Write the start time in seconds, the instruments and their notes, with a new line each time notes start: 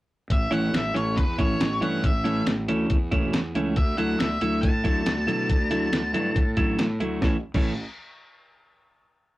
0.30 fingered electric bass A1, lead electric guitar E5, kick, closed hi-hat
0.51 fingered electric bass A1, clean electric guitar E3 A3 C#4 E4, lead electric guitar F#5, closed hi-hat
0.73 fingered electric bass A1, lead electric guitar E5, snare, closed hi-hat
0.94 fingered electric bass A1, clean electric guitar E3 A3 C#4 E4, lead electric guitar C#5, closed hi-hat
1.17 fingered electric bass E2, lead electric guitar B4, kick, closed hi-hat
1.38 fingered electric bass A1, clean electric guitar E3 A3 C#4 E4, lead electric guitar C#5, kick, closed hi-hat
1.59 fingered electric bass A1, snare, closed hi-hat
1.81 fingered electric bass G2, clean electric guitar E3 A3 C#4 E4, lead electric guitar F#5, closed hi-hat
2.03 fingered electric bass A1, lead electric guitar E5, kick, closed hi-hat
2.24 clean electric guitar E3 A3 C#4 E4, closed hi-hat
2.47 fingered electric bass A1, snare, closed hi-hat
2.68 fingered electric bass D2, clean electric guitar E3 A3 C#4 E4, closed hi-hat
2.90 fingered electric bass E2, kick, closed hi-hat
3.11 fingered electric bass E1, clean electric guitar E3 A3 C#4 E4, kick, closed hi-hat
3.33 fingered electric bass E2, snare, closed hi-hat
3.55 fingered electric bass C#2, clean electric guitar E3 A3 C#4 E4, closed hi-hat
3.76 fingered electric bass D2, lead electric guitar E5, kick, closed hi-hat
3.97 fingered electric bass D2, clean electric guitar D3 F#3 A3 E4, lead electric guitar F#5, closed hi-hat
4.19 fingered electric bass D2, lead electric guitar E5, snare, closed hi-hat
4.41 fingered electric bass D2, clean electric guitar D3 F#3 A3 E4, closed hi-hat
4.61 fingered electric bass A2, lead electric guitar A5, kick, closed hi-hat
4.84 fingered electric bass D2, clean electric guitar D3 F#3 A3 E4, kick, closed hi-hat
5.06 fingered electric bass D2, snare, closed hi-hat
5.26 fingered electric bass B2, clean electric guitar D3 F#3 A3 E4, closed hi-hat
5.50 fingered electric bass D2, kick, closed hi-hat
5.71 clean electric guitar D3 F#3 A3 E4, closed hi-hat
5.92 fingered electric bass D2, snare, closed hi-hat
6.13 fingered electric bass G2, clean electric guitar D3 F#3 A3 E4, closed hi-hat
6.35 fingered electric bass A2, kick, closed hi-hat
6.57 fingered electric bass A1, clean electric guitar D3 F#3 A3 E4, kick, closed hi-hat
6.78 fingered electric bass A2, snare, closed hi-hat
7.00 fingered electric bass D2, clean electric guitar D3 F#3 A3 E4, closed hi-hat
7.21 fingered electric bass A1, clean electric guitar A2 E3 A3 C#4 E4, kick, snare
7.54 fingered electric bass A1, clean electric guitar A2 E3 A3 C#4 E4, kick, crash